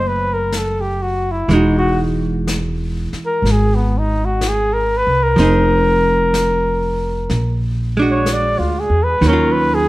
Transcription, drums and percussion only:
0.52 brush sweep soft
0.52 snare soft
0.52 hi-hat pedal soft
1.50 brush sweep soft
1.50 snare soft
2.47 brush sweep soft
2.47 snare soft
2.47 hi-hat pedal medium
3.13 snare soft
3.45 brush sweep soft
3.45 snare soft
4.41 brush sweep soft
4.41 snare soft
4.41 hi-hat pedal medium
5.37 brush sweep soft
5.37 snare soft
6.34 brush sweep soft
6.34 snare soft
6.34 hi-hat pedal medium
7.30 brush sweep soft
7.30 snare soft
8.26 brush sweep soft
8.26 snare soft
8.26 hi-hat pedal medium
9.22 brush sweep soft
9.22 snare soft

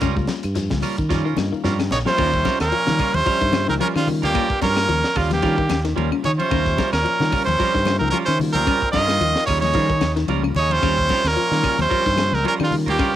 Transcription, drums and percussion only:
0.01 kick medium
0.01 closed hi-hat medium
0.01 high conga soft
0.01 claves medium
0.01 shekere medium
0.17 kick medium
0.17 shekere soft
0.27 snare medium
0.27 closed hi-hat medium
0.27 high conga medium
0.27 shekere medium
0.43 closed hi-hat medium
0.43 claves medium
0.43 shekere soft
0.55 snare soft
0.55 closed hi-hat medium
0.55 high conga soft
0.55 shekere medium
0.70 kick medium
0.70 snare medium
0.70 high conga medium
0.70 shekere soft
0.82 open hi-hat medium
0.82 high conga medium
0.82 low conga medium
0.82 claves medium
0.82 shekere medium
0.98 kick medium
0.98 closed hi-hat medium
0.98 shekere soft
1.11 kick medium
1.11 snare soft
1.11 shekere medium
1.26 shekere soft
1.37 snare medium
1.37 high conga loud
1.37 claves medium
1.37 shekere medium
1.53 shekere soft
1.64 snare medium
1.64 shekere medium
1.79 snare medium
1.79 high conga medium
1.79 claves medium
1.79 shekere soft
1.91 snare medium
1.91 low conga medium
1.91 shekere medium
2.06 snare medium
2.06 high conga medium
2.06 shekere soft
2.18 kick medium
2.18 crash medium
2.18 claves medium
2.34 kick medium
2.45 kick medium
2.45 snare medium
2.45 ride bell soft
2.45 high conga loud
2.60 snare medium
2.60 ride bell soft
2.60 claves medium
2.72 ride bell medium
2.87 snare medium
2.87 high conga medium
2.87 low conga medium
2.99 kick medium
2.99 open hi-hat medium
2.99 low conga medium
2.99 claves medium
3.14 ride bell soft
3.14 high conga medium
3.26 kick medium
3.26 ride bell medium
3.42 kick medium
3.53 snare medium
3.53 ride bell medium
3.53 high conga loud
3.53 claves medium
3.68 snare soft
3.68 high conga medium
3.81 ride bell medium
3.81 high conga medium
3.95 high conga medium
3.95 claves medium
4.07 open hi-hat medium
4.07 low conga medium
4.23 ride bell medium
4.35 kick loud
4.35 snare soft
4.35 ride bell medium
4.35 claves medium
4.50 kick medium
4.62 kick medium
4.62 snare medium
4.62 ride bell medium
4.62 high conga loud
4.76 snare medium
4.76 claves medium
4.89 ride bell medium
5.04 snare medium
5.15 kick medium
5.15 snare soft
5.15 open hi-hat medium
5.15 low conga medium
5.15 claves medium
5.30 snare soft
5.30 ride bell medium
5.30 high conga medium
5.42 kick medium
5.42 snare soft
5.42 ride bell medium
5.58 kick medium
5.69 snare medium
5.69 ride bell medium
5.69 high conga loud
5.69 claves medium
5.85 snare soft
5.85 ride bell medium
5.97 ride bell medium
5.97 high conga medium
6.12 claves medium
6.24 ride bell medium
6.24 low conga medium
6.40 ride bell medium
6.40 high conga medium
6.51 kick medium
6.51 ride bell soft
6.51 claves medium
6.66 kick medium
6.66 snare soft
6.78 kick medium
6.78 snare medium
6.78 ride bell medium
6.78 high conga loud
6.93 snare medium
6.93 ride bell medium
6.93 claves medium
7.06 ride bell medium
7.20 snare medium
7.20 low conga medium
7.32 kick medium
7.32 snare soft
7.32 open hi-hat medium
7.32 low conga medium
7.32 claves medium
7.47 ride bell soft
7.47 high conga medium
7.60 kick medium
7.60 snare soft
7.60 ride bell medium
7.75 kick medium
7.75 snare soft
7.86 snare medium
7.86 ride bell medium
7.86 high conga loud
7.86 claves medium
8.00 high conga medium
8.12 ride bell medium
8.12 high conga medium
8.28 claves medium
8.39 open hi-hat medium
8.39 low conga medium
8.54 ride bell medium
8.54 high conga medium
8.67 kick medium
8.67 ride bell medium
8.67 claves medium
8.82 kick medium
8.93 kick medium
8.93 snare medium
8.93 ride bell medium
8.93 high conga medium
9.08 snare medium
9.08 claves medium
9.21 ride bell medium
9.36 snare medium
9.47 kick medium
9.47 open hi-hat medium
9.47 low conga medium
9.47 claves medium
9.62 snare soft
9.62 ride bell medium
9.62 high conga medium
9.73 kick medium
9.73 snare soft
9.73 ride bell medium
9.90 kick medium
10.01 snare medium
10.01 ride bell medium
10.01 high conga loud
10.01 claves medium
10.16 snare soft
10.16 ride bell medium
10.28 ride bell medium
10.28 high conga medium
10.43 high conga medium
10.43 claves medium
10.55 ride bell medium
10.55 low conga medium
10.70 ride bell medium
10.70 high conga medium
10.83 kick medium
10.83 snare soft
10.83 ride bell medium
10.83 claves medium
10.98 kick medium
11.09 kick medium
11.09 snare medium
11.09 ride bell medium
11.09 high conga loud
11.25 snare medium
11.25 ride bell medium
11.25 claves medium
11.37 ride bell medium
11.52 snare medium
11.63 kick medium
11.63 snare soft
11.63 open hi-hat medium
11.63 low conga medium
11.63 claves medium
11.78 snare soft
11.78 ride bell medium
11.78 high conga medium
11.91 kick medium
11.91 ride bell medium
12.06 kick medium
12.06 snare soft
12.18 snare medium
12.18 ride bell medium
12.18 high conga loud
12.18 claves medium
12.32 snare soft
12.32 high conga medium
12.45 ride bell soft
12.45 high conga medium
12.59 high conga medium
12.59 claves medium
12.71 open hi-hat medium
12.71 low conga medium
12.88 ride bell medium
12.99 kick medium
12.99 snare soft
12.99 ride bell medium
12.99 claves medium

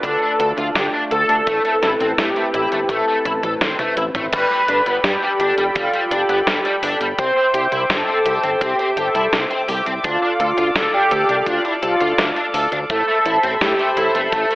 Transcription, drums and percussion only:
0.03 kick loud
0.03 closed hi-hat medium
0.40 closed hi-hat medium
0.58 closed hi-hat soft
0.75 snare loud
0.75 closed hi-hat medium
1.11 closed hi-hat medium
1.29 closed hi-hat soft
1.47 kick loud
1.47 closed hi-hat medium
1.65 closed hi-hat soft
1.83 snare medium
1.83 closed hi-hat medium
2.00 closed hi-hat soft
2.18 snare loud
2.18 closed hi-hat medium
2.36 closed hi-hat soft
2.54 closed hi-hat medium
2.72 closed hi-hat medium
2.89 kick loud
2.89 closed hi-hat medium
3.25 kick medium
3.25 closed hi-hat medium
3.25 high tom medium
3.43 closed hi-hat medium
3.43 high tom medium
3.61 snare loud
3.61 closed hi-hat medium
3.61 mid tom medium
3.79 closed hi-hat soft
3.79 mid tom medium
3.97 closed hi-hat medium
4.15 closed hi-hat medium
4.15 mid tom medium
4.33 kick loud
4.33 closed hi-hat medium
4.33 crash loud
4.68 closed hi-hat medium
4.86 closed hi-hat medium
5.04 snare loud
5.04 closed hi-hat medium
5.40 closed hi-hat medium
5.58 closed hi-hat medium
5.76 kick loud
5.76 closed hi-hat medium
5.93 closed hi-hat soft
6.11 closed hi-hat medium
6.29 closed hi-hat medium
6.47 snare loud
6.47 closed hi-hat medium
6.65 closed hi-hat soft
6.83 open hi-hat medium
7.01 closed hi-hat medium
7.19 kick loud
7.19 closed hi-hat medium
7.54 closed hi-hat medium
7.72 closed hi-hat medium
7.90 snare loud
7.90 closed hi-hat medium
8.26 closed hi-hat medium
8.43 closed hi-hat medium
8.61 kick loud
8.61 closed hi-hat medium
8.79 closed hi-hat soft
8.97 closed hi-hat medium
9.15 closed hi-hat medium
9.33 snare loud
9.33 closed hi-hat medium
9.51 closed hi-hat soft
9.69 open hi-hat medium
9.86 closed hi-hat medium
10.04 kick loud
10.04 closed hi-hat medium
10.40 closed hi-hat medium
10.58 closed hi-hat medium
10.76 snare loud
10.76 closed hi-hat medium
11.11 closed hi-hat medium
11.29 closed hi-hat medium
11.46 kick loud
11.46 closed hi-hat medium
11.65 closed hi-hat soft
11.83 closed hi-hat medium
12.01 closed hi-hat medium
12.18 snare loud
12.18 closed hi-hat medium
12.36 closed hi-hat soft
12.54 open hi-hat medium
12.72 closed hi-hat medium
12.90 kick loud
12.90 closed hi-hat medium
13.26 closed hi-hat medium
13.43 closed hi-hat medium
13.61 snare loud
13.61 closed hi-hat medium
13.79 closed hi-hat soft
13.97 closed hi-hat medium
14.15 closed hi-hat medium
14.32 kick loud
14.32 closed hi-hat medium
14.51 closed hi-hat soft

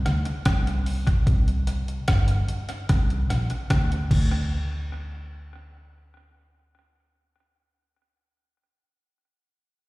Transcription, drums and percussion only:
0.06 cross-stick medium
0.06 closed hi-hat medium
0.25 closed hi-hat medium
0.45 kick loud
0.45 cross-stick loud
0.45 closed hi-hat medium
0.67 closed hi-hat medium
0.86 open hi-hat medium
1.07 kick medium
1.07 closed hi-hat medium
1.27 kick loud
1.27 closed hi-hat medium
1.48 closed hi-hat soft
1.67 closed hi-hat medium
1.88 closed hi-hat soft
2.08 kick medium
2.08 cross-stick medium
2.08 closed hi-hat medium
2.28 closed hi-hat medium
2.48 closed hi-hat medium
2.69 closed hi-hat medium
2.89 kick loud
2.89 cross-stick medium
2.89 closed hi-hat medium
3.10 closed hi-hat soft
3.30 cross-stick medium
3.30 closed hi-hat medium
3.50 closed hi-hat medium
3.70 kick medium
3.70 cross-stick medium
3.70 closed hi-hat medium
3.92 closed hi-hat medium
4.11 kick medium
4.11 crash medium

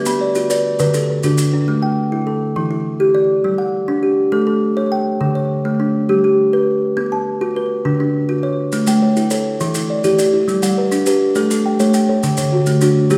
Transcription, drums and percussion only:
0.06 maracas medium
0.35 maracas medium
0.50 maracas medium
0.79 maracas medium
0.94 maracas medium
1.23 maracas medium
1.38 maracas medium
8.72 maracas soft
8.87 maracas medium
9.17 maracas soft
9.31 maracas medium
9.60 maracas medium
9.75 maracas medium
10.04 maracas medium
10.19 maracas medium
10.49 maracas soft
10.63 maracas medium
10.92 maracas medium
11.06 maracas medium
11.35 maracas medium
11.51 maracas medium
11.80 maracas medium
11.94 maracas medium
12.23 maracas medium
12.37 maracas medium
12.66 maracas medium
12.81 maracas medium
13.10 maracas medium

